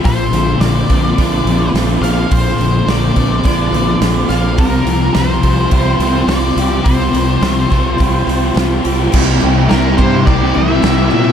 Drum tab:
CC |--------|--------|--------|--------|
HH |oooooooo|oooooooo|oooooooo|oooooooo|
SD |--o---o-|--o---oo|--o---o-|--o---o-|
BD |o--oo---|o--oo---|o--oo---|o--oo---|

CC |x-x-x-x-|
HH |--------|
SD |--o---o-|
BD |o--oo---|